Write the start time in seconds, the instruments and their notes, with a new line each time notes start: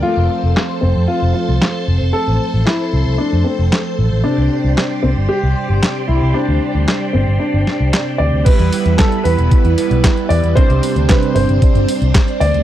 0.03 analog polysynth F3 A3 C4 A4, grand piano F4, string machine A4 C5 A5 C6
0.17 picked electric bass F1
0.44 picked electric bass F1
0.57 snare, clap
0.81 picked electric bass F1, grand piano C4
0.96 picked electric bass F2
1.08 grand piano F4
1.22 picked electric bass F1
1.34 grand piano F4
1.49 picked electric bass C2
1.62 snare, clap
1.88 picked electric bass F1
2.13 grand piano A4
2.28 picked electric bass A1
2.54 picked electric bass A1
2.65 grand piano E4, snare, clap
2.93 picked electric bass C2
3.07 picked electric bass C2
3.18 grand piano D4
3.33 picked electric bass F2
3.44 grand piano C4
3.59 picked electric bass F1
3.73 snare, clap
3.99 picked electric bass A1
4.12 picked electric bass A1
4.24 analog polysynth C3 G3 C4 D4 C5, grand piano D4, string machine G4 D5
4.38 picked electric bass C2
4.65 picked electric bass C2
4.78 snare, clap
5.03 picked electric bass C2, grand piano C4
5.17 picked electric bass G1
5.29 grand piano G4
5.43 picked electric bass C2
5.70 picked electric bass G1
5.83 snare, clap
6.08 picked electric bass C2, grand piano E4
6.22 picked electric bass C2
6.34 grand piano D4
6.49 picked electric bass D2
6.75 picked electric bass D2
6.88 snare, clap
7.13 picked electric bass G1, grand piano C4
7.28 picked electric bass G1
7.39 grand piano D4
7.54 picked electric bass G1
7.67 snare
7.80 picked electric bass C2
7.94 snare, clap
8.18 picked electric bass D2, grand piano D5
8.33 picked electric bass D2
8.45 analog polysynth G3 B3 E4 B4, string machine G3 B3 E4 B4, grand piano B4, kick, closed hi-hat, crash
8.59 picked electric bass E2, closed hi-hat
8.73 open hi-hat
8.86 picked electric bass E2, closed hi-hat
8.98 grand piano A4, kick, snare, clap, closed hi-hat
9.12 closed hi-hat
9.24 picked electric bass E2, grand piano B4, open hi-hat
9.38 picked electric bass E1, closed hi-hat
9.51 kick, closed hi-hat
9.65 picked electric bass E2, closed hi-hat
9.78 analog polysynth G3 B3 E4 B4, open hi-hat
9.91 picked electric bass B1, closed hi-hat
10.04 kick, snare, clap, closed hi-hat
10.17 closed hi-hat
10.29 picked electric bass E2, grand piano D5, open hi-hat
10.44 picked electric bass E2, closed hi-hat
10.55 analog polysynth C3 G3 C4 D4 C5, string machine C4 D4 C5, grand piano C5, kick, closed hi-hat
10.70 picked electric bass C2, closed hi-hat
10.83 open hi-hat
10.96 picked electric bass D2, closed hi-hat
11.09 grand piano B4, kick, snare, clap, closed hi-hat
11.23 closed hi-hat
11.35 picked electric bass G1, grand piano C5, open hi-hat
11.49 picked electric bass G1, closed hi-hat
11.62 kick, closed hi-hat
11.75 picked electric bass G1, closed hi-hat
11.88 open hi-hat
12.02 picked electric bass C2, closed hi-hat
12.15 kick, snare, clap, closed hi-hat
12.28 closed hi-hat
12.40 picked electric bass D2, grand piano D5, open hi-hat
12.54 picked electric bass D2, closed hi-hat